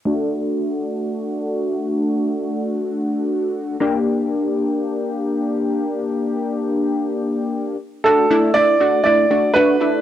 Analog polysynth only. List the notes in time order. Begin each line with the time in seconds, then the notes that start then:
0.05 A3 D4 F#4
3.80 A#3 D4 G4
8.05 A3 D4 F#4
8.30 A3 D4 E4
8.55 A3 D4 E4
8.80 A3 D4 F#4
9.05 A3 D4 E4
9.30 A3 D4 F#4
9.55 A3 D4 F#4
9.80 A3 D4 E4